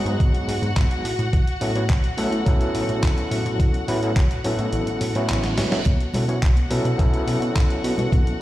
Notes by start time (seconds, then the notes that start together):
Already playing: F#3 G#3 B3 D#4 F#4 G#4 F#5
0.05 G#2, closed hi-hat
0.20 G#1, kick, closed hi-hat
0.34 G#2, closed hi-hat
0.48 G#2, open hi-hat
0.62 G#2, closed hi-hat
0.77 G#1, kick, clap, closed hi-hat
0.91 closed hi-hat
1.05 A2, open hi-hat
1.19 A2, closed hi-hat
1.33 A1, kick, closed hi-hat
1.47 closed hi-hat
1.61 A2 F#3 B3 C#4 E4 A4, open hi-hat
1.75 F#3 B3 C#4 E4 C#5, closed hi-hat
1.90 A1, kick, clap, closed hi-hat
2.04 closed hi-hat
2.17 A2 F#3 B3 C#4 E4 A4, open hi-hat
2.32 A2, closed hi-hat
2.46 A1 F#3 B3 C#4 E4 A4, kick, closed hi-hat
2.61 closed hi-hat
2.75 A2, open hi-hat
2.89 A2, closed hi-hat
3.03 A1, kick, clap, closed hi-hat
3.18 closed hi-hat
3.31 A2, open hi-hat
3.46 A2, closed hi-hat
3.60 A1, kick, closed hi-hat
3.74 closed hi-hat
3.88 A2 F#3 B3 C#4 E4 B4, open hi-hat
4.02 F#3 B3 C#4 E4 A4, closed hi-hat
4.16 A1, kick, clap, closed hi-hat
4.31 closed hi-hat
4.44 A2 F#3 B3 C#4 E4 A4, open hi-hat
4.59 A2, closed hi-hat
4.73 A1, closed hi-hat, reverse cymbal
4.87 A2, closed hi-hat
5.01 A2, open hi-hat
5.15 A2 F#3 B3 C#4 E4 F#4, closed hi-hat
5.29 A1, clap, closed hi-hat
5.44 snare, closed hi-hat
5.58 A2 F#3 B3 C#4 E4 B4, snare, open hi-hat
5.72 A2 F#3 B3 C#4 E4 A4, snare, closed hi-hat
5.86 B1 F#4 F#5, kick, closed hi-hat, high conga
6.00 closed hi-hat
6.14 B2 F#3 B3 C#4 E4 A4, open hi-hat, low conga
6.28 F#3 B3 C#4 E4 C#5, closed hi-hat
6.43 B1, kick, clap, closed hi-hat
6.56 closed hi-hat, high conga
6.71 B2 F#3 B3 C#4 E4 A4, open hi-hat
6.85 B2, closed hi-hat
6.98 B1 F#3 B3 C#4 E4 A4, kick, closed hi-hat
7.14 closed hi-hat
7.27 B2, open hi-hat
7.42 B2, closed hi-hat
7.56 B1, kick, clap, closed hi-hat
7.70 closed hi-hat
7.84 B2, open hi-hat
7.98 B2, closed hi-hat, low conga
8.12 B1, kick, closed hi-hat, high conga
8.27 closed hi-hat